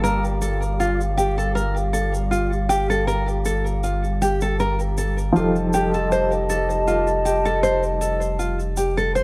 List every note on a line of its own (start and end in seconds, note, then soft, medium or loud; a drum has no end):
0.00 5.32 G1 medium
0.00 5.30 G3 medium
0.00 9.23 G3 medium
0.00 5.33 A#3 medium
0.00 5.31 F4 medium
0.00 9.23 G4 medium
0.00 0.23 A#4 medium
0.00 5.31 F5 medium
0.00 5.32 A5 medium
0.04 shaker soft
0.24 shaker soft
0.42 0.61 A4 medium
0.42 shaker medium
0.62 shaker soft
0.80 0.99 F4 medium
0.80 shaker soft
1.01 shaker soft
1.17 1.36 G4 medium
1.17 shaker medium
1.38 1.55 A4 medium
1.38 shaker soft
1.55 1.75 A#4 medium
1.55 shaker soft
1.77 shaker soft
1.93 2.13 A4 medium
1.93 shaker medium
2.14 shaker soft
2.31 2.51 F4 medium
2.31 shaker soft
2.53 shaker soft
2.69 2.88 G4 medium
2.69 shaker medium
2.90 3.07 A4 medium
2.90 shaker soft
3.07 3.27 A#4 medium
3.07 shaker soft
3.28 shaker soft
3.45 3.65 A4 medium
3.45 shaker medium
3.66 shaker soft
3.83 4.03 F4 medium
3.83 shaker soft
4.04 shaker soft
4.22 4.40 G4 medium
4.22 shaker medium
4.41 4.59 A4 medium
4.41 shaker soft
4.60 4.79 A#4 medium
4.60 shaker soft
4.80 shaker soft
4.98 5.17 A4 medium
4.98 shaker medium
5.18 shaker soft
5.32 9.23 F1 medium
5.32 9.23 F3 medium
5.32 9.23 D#4 medium
5.32 5.55 F4 medium
5.32 9.23 G4 medium
5.32 9.23 D#5 medium
5.32 9.23 A5 medium
5.32 shaker soft
5.37 9.23 G4 medium
5.37 9.23 A4 medium
5.56 shaker soft
5.73 5.92 G4 medium
5.73 shaker medium
5.94 6.11 A4 medium
5.94 shaker soft
6.12 6.31 C5 medium
6.12 shaker soft
6.32 shaker soft
6.50 6.69 A4 medium
6.50 shaker medium
6.70 shaker soft
6.87 7.07 F4 medium
6.87 shaker soft
7.07 shaker soft
7.25 7.44 G4 medium
7.25 shaker medium
7.45 7.62 A4 medium
7.45 shaker soft
7.63 7.83 C5 medium
7.63 shaker soft
7.83 shaker soft
8.01 8.21 A4 medium
8.01 shaker medium
8.21 shaker soft
8.39 8.59 F4 medium
8.39 shaker soft
8.60 shaker soft
8.77 8.96 G4 medium
8.77 shaker medium
8.97 9.14 A4 medium
8.97 shaker soft
9.15 9.23 C5 medium
9.15 shaker soft